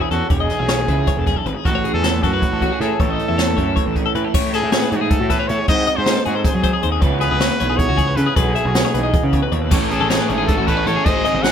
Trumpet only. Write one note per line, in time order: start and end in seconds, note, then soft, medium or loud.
0.12 0.29 F#4 medium
0.30 1.41 G#4 loud
1.65 1.92 F#4 loud
1.94 2.25 A4 loud
2.23 2.83 F#4 loud
2.81 3.01 G#4 medium
3.00 3.96 A4 loud
4.55 4.90 G#4 loud
4.92 5.03 F#4 medium
4.92 4.97 G#4 medium
5.01 5.12 G#4 medium
5.10 5.32 A4 medium
5.30 5.50 B4 medium
5.48 5.68 C#5 loud
5.69 5.98 D#5 loud
5.97 6.26 C5 loud
6.26 6.37 F#4 medium
6.37 6.46 A4 medium
6.45 6.88 G#4 loud
7.21 7.79 B4 loud
7.77 8.18 C#5 loud
8.16 8.38 B4 medium
8.36 9.52 G#4 loud
9.91 10.44 G#4 medium
10.47 10.69 A4 medium
10.67 10.89 B4 medium
10.87 11.07 C#5 loud
11.05 11.44 D#5 loud
11.43 11.52 F#5 loud